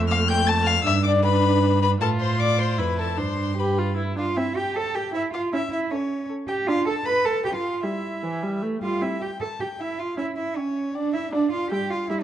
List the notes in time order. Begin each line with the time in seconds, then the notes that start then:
Already playing: F2 A3
0.09 F5 F6
0.28 G5 G6
0.47 A5 A6
0.65 F5 F6
0.84 G2 D4 E5 E6
1.03 D5 D6
1.23 B4 B5
1.82 B4 B5
2.01 A2 F4 A4 A5
2.20 C5 C6
2.40 D5 D6
2.59 C5 C6
2.79 F2 E4 B4 B5
2.98 A4 A5
3.18 G2 D4 C5 C6
3.57 G4 B4 B5
3.78 F4
3.97 E4
4.17 D4 F4 F5
4.37 C4 E4 E5
4.57 G4 G5
4.76 A4 C5 A5
4.95 G4 G5
5.14 E4 C5 E5
5.34 F4 F5
5.53 C#4 E4 E5
5.71 E4 E5
5.91 C#4 A4 C#5
6.30 A4
6.48 G4 G5
6.67 D4 F4 F5
6.86 A4 A5
7.06 A4 B4 B5
7.25 A4 A5
7.44 G4 A4 G5
7.54 F4 F5
7.83 G3 E4 E5
8.23 E3 C5
8.43 G3
8.62 A3 B4
8.82 G3 F4 F5
9.01 C4 E4 E5
9.21 G4 G5
9.40 A4 G5 A5
9.60 G4 G5
9.79 E4 E5 G5
9.99 F4 F5
10.18 C#4 E4 E5
10.37 E4 E5
10.56 C#4 C#5 G5
10.94 D4 D5 G5
11.14 E4 E5
11.32 D4 D5 F5
11.52 F4 F5
11.71 G3 G4 E5 G5
11.90 F4 F5
12.10 G3 E4 E5 F5
12.20 D4